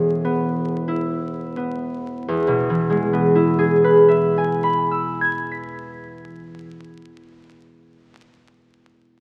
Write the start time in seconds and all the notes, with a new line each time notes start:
Already playing: E1 E2 E3 G#3 B3 G#4 B4 E5
0.25 B3
0.88 E4
1.57 B3
2.28 E2
2.48 B2
2.70 E3
2.90 G#3
3.13 B3
3.35 E4
3.59 G#4
3.84 B4
4.08 E5
4.38 G#5
4.63 B5
4.91 E6
5.21 G#6
5.52 B6